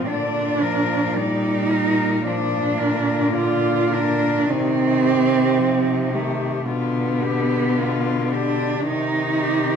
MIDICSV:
0, 0, Header, 1, 5, 480
1, 0, Start_track
1, 0, Key_signature, -2, "major"
1, 0, Tempo, 1090909
1, 34, Time_signature, 4, 2, 24, 8
1, 1474, Tempo, 1117318
1, 2434, Tempo, 1086957
1, 4278, End_track
2, 0, Start_track
2, 0, Title_t, "Cello"
2, 0, Program_c, 0, 42
2, 32, Note_on_c, 0, 74, 37
2, 269, Note_on_c, 0, 70, 38
2, 276, Note_off_c, 0, 74, 0
2, 509, Note_on_c, 0, 74, 30
2, 516, Note_off_c, 0, 70, 0
2, 748, Note_on_c, 0, 70, 33
2, 754, Note_off_c, 0, 74, 0
2, 988, Note_off_c, 0, 70, 0
2, 991, Note_on_c, 0, 74, 39
2, 1221, Note_on_c, 0, 70, 33
2, 1228, Note_off_c, 0, 74, 0
2, 1465, Note_on_c, 0, 74, 30
2, 1471, Note_off_c, 0, 70, 0
2, 1716, Note_on_c, 0, 70, 32
2, 1722, Note_off_c, 0, 74, 0
2, 1955, Note_off_c, 0, 70, 0
2, 1960, Note_on_c, 0, 63, 39
2, 2201, Note_on_c, 0, 67, 33
2, 2207, Note_off_c, 0, 63, 0
2, 2431, Note_on_c, 0, 63, 33
2, 2438, Note_off_c, 0, 67, 0
2, 2667, Note_on_c, 0, 67, 35
2, 2673, Note_off_c, 0, 63, 0
2, 2907, Note_off_c, 0, 67, 0
2, 2913, Note_on_c, 0, 65, 39
2, 3155, Note_on_c, 0, 67, 36
2, 3162, Note_off_c, 0, 65, 0
2, 3402, Note_on_c, 0, 65, 38
2, 3408, Note_off_c, 0, 67, 0
2, 3651, Note_on_c, 0, 67, 33
2, 3658, Note_off_c, 0, 65, 0
2, 3882, Note_off_c, 0, 67, 0
2, 3885, Note_on_c, 0, 63, 44
2, 4124, Note_on_c, 0, 67, 40
2, 4131, Note_off_c, 0, 63, 0
2, 4278, Note_off_c, 0, 67, 0
2, 4278, End_track
3, 0, Start_track
3, 0, Title_t, "Cello"
3, 0, Program_c, 1, 42
3, 32, Note_on_c, 1, 62, 58
3, 512, Note_on_c, 1, 63, 63
3, 519, Note_off_c, 1, 62, 0
3, 997, Note_on_c, 1, 62, 53
3, 1004, Note_off_c, 1, 63, 0
3, 1474, Note_off_c, 1, 62, 0
3, 1478, Note_on_c, 1, 65, 58
3, 1724, Note_on_c, 1, 62, 58
3, 1731, Note_off_c, 1, 65, 0
3, 1969, Note_on_c, 1, 60, 71
3, 1975, Note_off_c, 1, 62, 0
3, 2683, Note_on_c, 1, 57, 53
3, 2690, Note_off_c, 1, 60, 0
3, 2923, Note_on_c, 1, 59, 55
3, 2930, Note_off_c, 1, 57, 0
3, 3648, Note_on_c, 1, 62, 57
3, 3655, Note_off_c, 1, 59, 0
3, 3883, Note_off_c, 1, 62, 0
3, 3890, Note_on_c, 1, 63, 70
3, 4278, Note_off_c, 1, 63, 0
3, 4278, End_track
4, 0, Start_track
4, 0, Title_t, "Cello"
4, 0, Program_c, 2, 42
4, 28, Note_on_c, 2, 50, 39
4, 267, Note_on_c, 2, 53, 41
4, 273, Note_off_c, 2, 50, 0
4, 511, Note_on_c, 2, 55, 51
4, 517, Note_off_c, 2, 53, 0
4, 988, Note_off_c, 2, 55, 0
4, 990, Note_on_c, 2, 53, 39
4, 1236, Note_on_c, 2, 50, 46
4, 1243, Note_off_c, 2, 53, 0
4, 1954, Note_off_c, 2, 50, 0
4, 1956, Note_on_c, 2, 51, 43
4, 2434, Note_on_c, 2, 53, 43
4, 2440, Note_off_c, 2, 51, 0
4, 2680, Note_on_c, 2, 51, 40
4, 2686, Note_off_c, 2, 53, 0
4, 2909, Note_off_c, 2, 51, 0
4, 2912, Note_on_c, 2, 50, 52
4, 3861, Note_off_c, 2, 50, 0
4, 3883, Note_on_c, 2, 51, 51
4, 4278, Note_off_c, 2, 51, 0
4, 4278, End_track
5, 0, Start_track
5, 0, Title_t, "Cello"
5, 0, Program_c, 3, 42
5, 37, Note_on_c, 3, 46, 44
5, 1954, Note_on_c, 3, 48, 46
5, 1961, Note_off_c, 3, 46, 0
5, 2907, Note_on_c, 3, 47, 40
5, 2913, Note_off_c, 3, 48, 0
5, 3875, Note_off_c, 3, 47, 0
5, 3877, Note_on_c, 3, 48, 50
5, 4278, Note_off_c, 3, 48, 0
5, 4278, End_track
0, 0, End_of_file